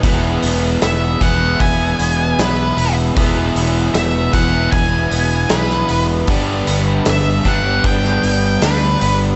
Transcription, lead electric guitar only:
0.84 E5
1.22 F#5
1.61 G#5
2.40 B4
3.94 E5
4.33 F#5
4.71 G#5
5.50 B4
7.10 E5
7.48 F#5
7.86 G5
8.62 B4

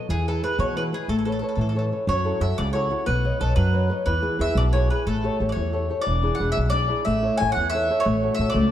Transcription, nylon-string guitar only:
0.09 E3
0.27 E4 G#4 B4
0.43 E4 G#4 B4
0.58 B2
0.76 E4 G#4 B4
0.92 E4 G#4 B4
1.09 A3
1.26 A4 B4 C#5
1.42 A4 B4 C#5
1.58 E3
1.75 A4 B4 C#5
1.92 A4 B4 C#5
2.09 F#3
2.24 E4 F#4 A4
2.40 E4 F#4 A4
2.59 C#3
2.74 E4 F#4 A4
2.90 E4 F#4 A4
3.06 B3
3.24 B4 C#5 D#5
3.40 B4 C#5 D#5
3.56 F#3
3.73 B4 C#5 D#5
3.90 B4 C#5 D#5
4.07 E3
4.22 E4 G#4 B4
4.39 E4 G#4 B4
4.57 B2
4.74 E4 G#4 B4
4.91 E4 G#4 B4
5.07 A3
5.23 G4 A4 C#5
5.40 G4 A4 C#5
5.56 E3
5.73 G4 A4 C#5
5.90 G4 A4 C#5
6.06 E3
6.22 D4 E4 G#4
6.40 D4 E4 G#4
6.55 B2
6.72 D4 E4 G#4
6.88 D4 E4 G#4
7.05 A3
7.22 E4 A4 C#5
7.40 E4 A4 C#5
7.58 E3
7.74 E4 A4 C#5
7.90 E4 A4 C#5
8.05 A3
8.22 F#4 A4 C#5
8.39 F#4 A4 C#5
8.55 A3

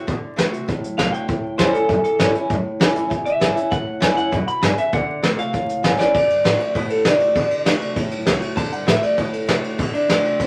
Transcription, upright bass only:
0.08 B2
0.23 muted upright bass stroke
0.37 A2
0.53 C3
0.68 A2
0.83 F#2
0.98 B1
1.13 muted upright bass stroke
1.28 A1
1.44 D2
1.59 E2
1.74 muted upright bass stroke
1.89 F#2
2.04 muted upright bass stroke
2.20 G2
2.35 muted upright bass stroke
2.50 F#2
2.65 muted upright bass stroke
2.81 E2
2.95 G2
3.11 E2
3.26 C#2
3.41 G1
3.56 muted upright bass stroke
3.72 A1
3.87 D2
4.02 E2
4.18 muted upright bass stroke
4.32 F#2
4.48 muted upright bass stroke
4.63 G2
4.78 muted upright bass stroke
4.93 D2
5.08 muted upright bass stroke
5.24 A2
5.39 C3
5.54 A1
5.69 C#2
5.84 G1
5.99 muted upright bass stroke
6.15 D2
6.29 G2
6.45 A2
6.60 muted upright bass stroke
6.75 B2
6.90 muted upright bass stroke
7.05 C3
7.21 muted upright bass stroke
7.36 B2
7.51 muted upright bass stroke
7.66 A2
7.81 C3
7.96 A2
8.11 F#2
8.27 C2
8.42 muted upright bass stroke
8.57 D2
8.71 G2
8.87 A2
9.02 muted upright bass stroke
9.18 B2
9.33 muted upright bass stroke
9.48 C3
9.63 muted upright bass stroke
9.79 B2
9.94 muted upright bass stroke
10.09 A2
10.23 C3
10.40 A2

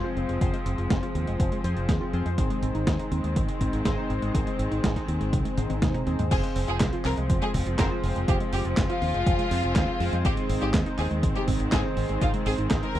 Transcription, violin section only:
6.31 G#4
6.68 G#4
7.05 A#4
7.42 G#4
7.79 A#4
8.28 G4
8.53 G4
8.90 F4
10.25 G4
10.62 G4
10.99 G#4
11.35 G4
11.72 G#4
12.21 F4
12.46 G#4
12.83 A#4

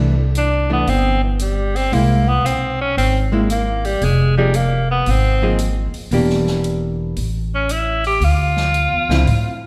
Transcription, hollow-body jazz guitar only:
Already playing: E3 A3 D4
0.70 E3 A3 D4
1.92 G#3 A#3 E4
3.32 G#3 A#3 E4
4.38 F3 A#3 D#4 G#4
5.42 F3 A#3 D#4 G#4
6.12 E3 A#3 D4 G4
9.10 D3 F3 C4 E4

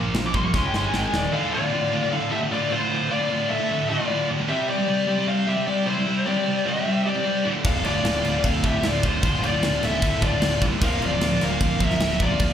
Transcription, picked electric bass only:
0.14 A#1
0.34 C2
0.54 C#2
0.73 G1
0.93 G#1
1.13 D#1
7.65 D1
7.84 D1
8.04 D1
8.24 D1
8.44 D1
8.64 D1
8.84 D1
9.03 D1
9.23 D1
9.43 D1
9.63 D1
9.82 D1
10.02 D1
10.42 D1
10.62 C2
10.81 D1
11.01 D1
11.21 D1
11.41 D1
11.61 D1
11.81 D1
12.00 D1
12.20 D1
12.40 D1

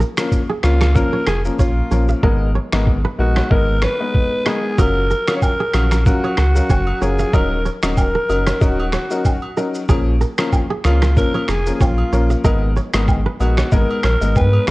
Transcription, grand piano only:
0.17 F3 A#3 C#4 A#4
0.63 F3 A#3 C#4 A#4
0.95 F3 A#3 C#4 A#4
1.45 F3 A#3 C#4 A#4
1.91 F3 A#3 C#4 A#4
2.23 G#3 B3 D#4 A#4
2.72 G#3 B3 D#4 A#4
3.19 G#3 B3 D#4 A#4
3.50 G#3 B3 D#4 A#4
4.00 G#3 B3 D#4 B4
4.46 G#3 B3 D#4 A#4
4.78 F#3 C#4 F4 A#4
5.28 F#3 C#4 F4 A#4
5.74 F#3 C#4 F4 A#4
6.06 F#3 C#4 F4 A#4
6.55 F#3 C#4 A#4 F5
7.01 F#3 C#4 F4 A#4
7.33 F#3 C#4 D#4 A#4
7.83 F#3 C#4 D#4 A#4
8.29 F#3 C#4 D#4 A#4
8.61 F#3 C#4 D#4 A#4
9.11 F#3 C#4 D#4 A#4
9.57 F#3 C#4 D#4 A#4
9.89 F3 A#3 C#4 A#4
10.38 F3 A#3 C#4 A#4
10.85 F3 A#3 C#4 A#4
11.17 F3 A#3 C#4 A#4
11.66 F3 A#3 C#4 A#4
12.12 F3 A#3 C#4 A#4
12.44 G#3 B3 D#4 A#4
12.94 G#3 B3 D#4 A#4
13.40 G#3 B3 D#4 A#4
13.72 G#3 B3 D#4 A#4
14.21 G#3 B3 D#4 A#4
14.67 G#3 B3

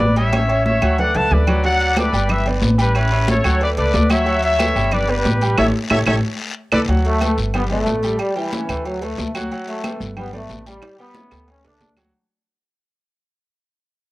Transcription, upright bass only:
0.00 A1
0.82 D2
1.15 C#2
1.31 D2
2.13 G1
2.62 A1
3.44 D2
3.77 C#2
3.94 D2
4.76 G1
5.25 A1
5.58 A1
5.90 A1
6.06 A1
6.72 D2
6.88 D2
7.38 G1
7.87 A1
8.69 D2
9.18 D2
10.00 G1
10.49 A1
11.31 D2
11.64 C#2
11.80 D2

